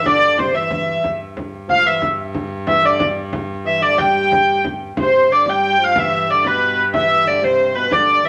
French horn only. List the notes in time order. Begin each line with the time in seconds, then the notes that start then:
0.04 D3
0.38 C3
0.54 E3
1.68 F3
1.85 E3
2.67 E3
2.83 D3
3.65 E3
3.82 D3
3.98 G3
4.97 C3
5.12 C3
5.30 D3
5.46 G3
5.80 F3
5.96 E3
6.30 D3
6.47 B2
6.94 E3
7.10 E3
7.25 D3
7.41 C3
7.74 B2
7.91 D3
8.24 E3